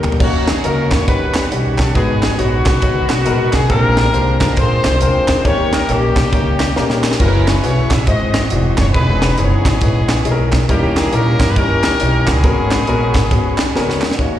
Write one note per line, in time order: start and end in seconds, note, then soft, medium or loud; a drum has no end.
0.00 0.17 G3 medium
0.00 0.11 A#3 medium
0.00 0.17 C#4 medium
0.00 0.11 D#4 medium
0.00 0.17 D#4 medium
0.00 0.12 G4 medium
0.00 0.14 A#4 medium
0.00 0.17 A#4 medium
0.00 0.19 D#5 medium
0.00 0.17 G5 medium
0.00 0.19 G5 medium
0.00 0.17 A#5 medium
0.00 0.19 C#6 medium
0.00 clap medium
0.04 0.18 E2 medium
0.04 floor tom medium
0.12 floor tom medium
0.19 0.58 D#2 loud
0.19 0.88 D#3 medium
0.19 1.06 D#3 medium
0.19 1.07 F#3 medium
0.19 0.55 A#3 medium
0.19 1.06 A#3 medium
0.19 1.05 A#3 medium
0.19 0.55 C#4 medium
0.19 1.07 C#4 medium
0.19 1.05 C#4 medium
0.19 0.55 D#4 medium
0.19 0.55 F#4 medium
0.19 1.07 F#4 medium
0.19 0.55 C#5 loud
0.19 kick loud
0.19 crash medium
0.24 0.48 F#4 medium
0.48 0.65 G#4 medium
0.48 snare loud
0.48 clap medium
0.48 closed hi-hat medium
0.64 0.88 C#2 loud
0.64 0.99 A#3 medium
0.64 0.99 C#4 medium
0.64 0.99 D#4 medium
0.64 0.99 F#4 medium
0.64 0.99 A#4 medium
0.64 0.92 A#4 loud
0.64 closed hi-hat medium
0.91 1.06 E2 medium
0.91 1.08 C#5 loud
0.91 kick loud
0.91 snare loud
0.91 clap loud
0.91 closed hi-hat medium
1.08 1.45 D#2 medium
1.08 1.92 D#3 medium
1.08 1.75 D#3 medium
1.08 1.94 G3 medium
1.08 1.43 G3 medium
1.08 1.93 B3 medium
1.08 1.94 C#4 medium
1.08 1.43 C#4 medium
1.08 1.43 D#4 medium
1.08 1.92 F#4 medium
1.08 1.92 G4 medium
1.08 1.49 B4 medium
1.08 1.43 B4 medium
1.08 1.43 F#5 medium
1.08 1.94 F#5 medium
1.08 kick loud
1.08 closed hi-hat medium
1.34 snare loud
1.34 clap loud
1.34 closed hi-hat medium
1.51 1.89 B1 medium
1.51 1.86 G3 medium
1.51 1.86 C#4 medium
1.51 1.87 D#4 medium
1.51 1.87 C#5 medium
1.51 1.87 F#5 medium
1.51 closed hi-hat loud
1.78 1.94 A4 medium
1.78 kick medium
1.78 snare loud
1.78 clap loud
1.78 closed hi-hat medium
1.93 2.33 G#1 loud
1.93 2.63 G#2 medium
1.93 3.66 D#3 medium
1.93 3.66 F#3 medium
1.93 3.66 G#3 medium
1.93 2.30 G#3 medium
1.93 3.66 B3 medium
1.93 2.37 B3 medium
1.93 2.30 B3 medium
1.93 2.37 D#4 medium
1.93 2.30 D#4 medium
1.93 3.66 F#4 medium
1.93 2.30 F#4 medium
1.93 2.39 G#4 loud
1.93 2.31 B4 loud
1.93 kick loud
1.93 closed hi-hat medium
2.22 snare loud
2.22 clap medium
2.22 closed hi-hat medium
2.38 2.62 A#1 loud
2.38 2.74 G#3 medium
2.38 3.50 B3 medium
2.38 2.74 B3 medium
2.38 3.50 D#4 medium
2.38 2.74 D#4 medium
2.38 3.53 F#4 medium
2.38 2.74 F#4 medium
2.38 2.74 C#5 medium
2.38 closed hi-hat medium
2.66 2.80 B1 medium
2.66 kick loud
2.66 snare loud
2.66 clap loud
2.66 closed hi-hat medium
2.82 3.06 C#2 medium
2.82 3.17 G#3 medium
2.82 3.17 B3 medium
2.82 3.17 D#4 medium
2.82 3.18 F#4 medium
2.82 3.18 C#5 medium
2.82 kick loud
2.82 closed hi-hat loud
3.09 3.24 B1 medium
3.09 snare loud
3.09 clap loud
3.09 closed hi-hat medium
3.25 3.50 A#1 medium
3.25 3.61 G#3 medium
3.25 3.61 B3 medium
3.25 3.61 D#4 medium
3.25 3.61 F#4 medium
3.25 3.61 A#4 loud
3.25 closed hi-hat loud
3.53 3.68 B1 medium
3.53 3.70 G#4 medium
3.53 kick medium
3.53 snare loud
3.53 clap loud
3.53 closed hi-hat medium
3.69 4.07 A#1 loud
3.69 4.37 A#2 medium
3.69 5.41 D3 medium
3.69 4.05 G#3 loud
3.69 5.42 G#3 medium
3.69 5.41 A#3 medium
3.69 4.05 C4 medium
3.69 5.41 C4 medium
3.69 4.05 D4 medium
3.69 4.54 D4 medium
3.69 4.54 F4 medium
3.69 4.05 G4 medium
3.69 4.53 A#4 loud
3.69 4.05 A#4 loud
3.69 5.42 G5 medium
3.69 kick loud
3.69 closed hi-hat medium
3.97 snare loud
3.97 clap medium
3.97 closed hi-hat medium
4.13 4.37 C2 medium
4.13 4.48 G#3 medium
4.13 4.48 C4 medium
4.13 4.48 D4 medium
4.13 4.48 G4 medium
4.13 4.49 C5 medium
4.13 closed hi-hat medium
4.41 4.55 G#1 loud
4.41 kick loud
4.41 snare loud
4.41 clap loud
4.41 closed hi-hat medium
4.57 4.81 A#1 loud
4.57 4.92 G#3 medium
4.57 4.92 C4 medium
4.57 4.92 D4 medium
4.57 5.01 F4 medium
4.57 5.01 G#4 medium
4.57 4.93 A#4 medium
4.57 5.01 C5 loud
4.57 4.93 G5 medium
4.57 kick loud
4.57 closed hi-hat loud
4.84 4.99 C2 medium
4.84 snare loud
4.84 clap loud
4.84 closed hi-hat medium
5.01 5.25 D#2 medium
5.01 5.36 G#3 medium
5.01 5.36 C4 medium
5.01 5.36 D4 medium
5.01 5.43 F4 medium
5.01 5.43 G#4 medium
5.01 5.36 A#4 medium
5.01 5.42 C5 loud
5.01 5.36 G5 medium
5.01 closed hi-hat loud
5.28 5.43 E2 loud
5.28 kick medium
5.28 snare loud
5.28 clap loud
5.28 closed hi-hat medium
5.45 5.82 D#2 loud
5.45 6.12 D#3 medium
5.45 7.17 D#3 medium
5.45 7.17 G3 medium
5.45 5.80 A#3 medium
5.45 7.17 A#3 medium
5.45 5.80 C#4 medium
5.45 7.17 C#4 medium
5.45 5.80 D#4 medium
5.45 5.80 G4 medium
5.45 7.17 G4 medium
5.45 5.90 G4 medium
5.45 5.72 A#4 medium
5.45 5.80 C#5 loud
5.45 5.73 C#5 loud
5.45 kick loud
5.45 closed hi-hat medium
5.73 5.89 A#4 loud
5.73 snare loud
5.73 clap medium
5.73 closed hi-hat medium
5.89 6.12 A#1 medium
5.89 6.23 A#3 medium
5.89 7.01 A#3 medium
5.89 6.24 C#4 medium
5.89 7.01 C#4 medium
5.89 6.24 D#4 medium
5.89 6.24 G4 medium
5.89 7.05 G4 medium
5.89 6.24 A#4 medium
5.89 closed hi-hat medium
6.16 6.30 B1 medium
6.16 kick loud
6.16 snare loud
6.16 clap loud
6.16 closed hi-hat medium
6.32 6.70 C#2 medium
6.32 6.67 A#3 medium
6.32 6.67 C#4 medium
6.32 6.67 D#4 medium
6.32 6.67 G4 medium
6.32 6.68 C#5 medium
6.32 kick loud
6.32 closed hi-hat medium
6.60 snare loud
6.60 clap loud
6.60 closed hi-hat medium
6.76 7.14 A#1 medium
6.76 7.11 A#3 medium
6.76 7.11 C#4 medium
6.76 7.11 D#4 medium
6.76 7.11 G4 medium
6.76 7.11 A#4 medium
6.76 snare medium
6.90 snare medium
7.04 snare loud
7.04 clap loud
7.11 snare loud
7.20 7.57 F#1 loud
7.20 8.06 E3 medium
7.20 7.55 G#3 medium
7.20 8.06 G#3 medium
7.20 8.06 B3 medium
7.20 7.54 C#4 medium
7.20 8.06 C#4 medium
7.20 8.04 C#4 medium
7.20 7.55 E4 medium
7.20 8.04 E4 medium
7.20 7.55 F#4 medium
7.20 8.06 F#4 medium
7.20 7.45 A#4 medium
7.20 7.27 A#4 medium
7.20 kick loud
7.20 crash medium
7.26 7.57 B4 loud
7.48 7.64 B4 medium
7.48 snare loud
7.48 clap medium
7.48 closed hi-hat medium
7.63 7.87 B1 medium
7.63 7.98 G#3 medium
7.63 7.98 C#4 medium
7.63 7.98 E4 medium
7.63 7.98 F#4 medium
7.63 7.98 B4 medium
7.63 7.89 C#5 loud
7.63 closed hi-hat medium
7.91 8.05 A#1 medium
7.91 8.07 E5 loud
7.91 kick loud
7.91 snare loud
7.91 clap loud
7.91 closed hi-hat medium
8.07 8.44 G#1 loud
8.07 8.74 G#2 medium
8.07 8.93 E3 medium
8.07 8.42 G#3 medium
8.07 8.93 G#3 medium
8.07 8.93 C4 medium
8.07 8.42 D#4 medium
8.07 8.42 E4 medium
8.07 8.93 F#4 medium
8.07 8.42 F#4 medium
8.07 8.91 F#4 medium
8.07 8.42 C5 medium
8.07 8.91 C5 medium
8.07 8.93 D#5 medium
8.07 8.49 D#5 medium
8.07 kick loud
8.07 closed hi-hat loud
8.34 snare loud
8.34 clap loud
8.34 closed hi-hat medium
8.50 8.75 E1 loud
8.50 8.86 G#3 medium
8.50 8.86 D#4 medium
8.50 8.86 E4 medium
8.50 8.86 F#4 medium
8.50 8.58 D5 medium
8.50 closed hi-hat medium
8.57 8.89 D#5 medium
8.77 8.92 F#1 loud
8.77 8.86 C#5 loud
8.77 kick medium
8.77 snare loud
8.77 clap loud
8.77 closed hi-hat medium
8.94 9.32 E1 loud
8.94 9.37 E3 medium
8.94 10.66 E3 medium
8.94 9.29 G#3 medium
8.94 10.66 B3 medium
8.94 9.29 C#4 medium
8.94 10.66 C#4 medium
8.94 9.77 D#4 medium
8.94 9.29 D#4 medium
8.94 9.36 G#4 medium
8.94 9.29 G#4 medium
8.94 10.66 G#4 medium
8.94 9.35 B4 loud
8.94 9.30 B4 loud
8.94 10.66 D#5 medium
8.94 kick loud
8.94 closed hi-hat medium
9.22 snare loud
9.22 clap medium
9.22 closed hi-hat medium
9.37 9.62 F#1 medium
9.37 9.73 E3 medium
9.37 9.73 G#3 medium
9.37 10.49 B3 medium
9.37 9.73 C#4 medium
9.37 10.49 C#4 medium
9.37 9.73 D#4 medium
9.37 10.52 G#4 medium
9.37 9.45 C5 medium
9.37 closed hi-hat medium
9.44 9.76 C#5 medium
9.65 9.79 G#1 loud
9.65 kick loud
9.65 snare loud
9.65 clap loud
9.65 closed hi-hat medium
9.81 10.19 A#1 medium
9.81 10.16 G#3 medium
9.81 10.17 C#4 medium
9.81 10.16 D#4 medium
9.81 10.17 E4 medium
9.81 10.17 B4 medium
9.81 kick loud
9.81 closed hi-hat loud
10.09 snare loud
10.09 clap loud
10.09 closed hi-hat medium
10.25 10.62 B1 loud
10.25 10.60 G#3 medium
10.25 10.60 C#4 medium
10.25 10.60 D#4 medium
10.25 10.60 E4 medium
10.25 10.32 G#4 medium
10.25 closed hi-hat medium
10.31 10.63 A#4 loud
10.52 kick medium
10.52 snare loud
10.52 clap loud
10.52 closed hi-hat medium
10.68 11.06 D#2 loud
10.68 11.36 D#3 medium
10.68 12.40 D#3 medium
10.68 11.03 G3 loud
10.68 12.40 A#3 medium
10.68 11.53 A#3 medium
10.68 11.04 C#4 medium
10.68 12.40 C#4 medium
10.68 11.12 C#4 medium
10.68 11.04 D#4 medium
10.68 11.04 E4 medium
10.68 12.40 G4 medium
10.68 10.96 G4 loud
10.68 11.04 A#4 loud
10.68 12.40 D#5 medium
10.68 kick loud
10.68 closed hi-hat medium
10.97 11.13 G#4 loud
10.97 snare loud
10.97 clap medium
10.97 closed hi-hat medium
11.12 11.36 A#2 medium
11.12 11.19 E3 medium
11.12 11.47 C#4 medium
11.12 11.55 C#4 medium
11.12 11.47 D#4 medium
11.12 11.48 E4 medium
11.12 11.55 G4 medium
11.12 11.48 A#4 medium
11.12 11.49 A#4 loud
11.12 closed hi-hat medium
11.18 11.50 G3 medium
11.40 11.54 G2 loud
11.40 kick loud
11.40 snare loud
11.40 clap loud
11.40 closed hi-hat medium
11.49 11.57 B4 loud
11.56 11.94 D#2 loud
11.56 11.91 G3 medium
11.56 11.91 C#4 medium
11.56 12.28 C#4 medium
11.56 11.91 D#4 medium
11.56 11.91 E4 medium
11.56 11.91 G4 medium
11.56 12.40 G4 medium
11.56 12.28 A#4 loud
11.56 kick loud
11.56 closed hi-hat medium
11.83 snare loud
11.83 clap loud
11.83 closed hi-hat medium
12.00 12.24 B1 medium
12.00 12.35 G3 medium
12.00 12.35 C#4 medium
12.00 12.35 D#4 medium
12.00 12.35 E4 medium
12.00 12.35 C#5 medium
12.00 closed hi-hat loud
12.27 12.41 C#2 loud
12.27 13.72 B3 medium
12.27 13.71 C#4 medium
12.27 13.76 G#4 loud
12.27 kick loud
12.27 snare loud
12.27 clap loud
12.27 closed hi-hat medium
12.44 12.81 G#1 loud
12.44 13.11 G#2 medium
12.44 12.78 G#3 medium
12.44 14.15 G#3 medium
12.44 12.78 B3 medium
12.44 14.15 B3 medium
12.44 12.79 C#4 medium
12.44 14.15 C#4 medium
12.44 14.15 F#4 medium
12.44 12.79 F#4 medium
12.44 14.15 G#4 medium
12.44 12.79 A#4 loud
12.44 kick loud
12.44 closed hi-hat medium
12.71 snare loud
12.71 clap medium
12.71 closed hi-hat medium
12.87 13.11 A#1 medium
12.87 13.22 G#3 medium
12.87 13.22 B3 medium
12.87 13.22 C#4 medium
12.87 13.22 F#4 medium
12.87 13.23 A#4 loud
12.87 closed hi-hat medium
13.14 13.29 G#1 loud
13.14 kick loud
13.14 snare loud
13.14 clap loud
13.14 closed hi-hat medium
13.31 13.68 D#2 medium
13.31 13.66 G#3 medium
13.31 13.66 B3 medium
13.31 13.66 C#4 medium
13.31 13.66 F#4 medium
13.31 13.66 G#4 medium
13.31 kick loud
13.31 closed hi-hat medium
13.58 snare loud
13.58 clap loud
13.58 closed hi-hat medium
13.74 14.03 C#2 medium
13.74 14.10 G#3 medium
13.74 14.10 B3 medium
13.74 14.10 C#4 medium
13.74 14.10 F#4 medium
13.74 14.10 A#4 medium
13.74 14.15 B5 medium
13.74 snare medium
13.90 snare medium
14.01 14.16 E2 medium
14.01 snare loud
14.01 clap loud
14.11 snare medium
14.19 14.39 D#2 medium
14.19 14.39 D#3 medium
14.19 14.39 F#3 medium
14.19 14.39 A#3 medium
14.19 14.39 C#4 medium
14.19 14.39 D#4 medium
14.19 14.39 F#4 medium
14.19 14.39 A#4 medium
14.19 14.39 C#5 loud
14.19 kick loud
14.19 closed hi-hat medium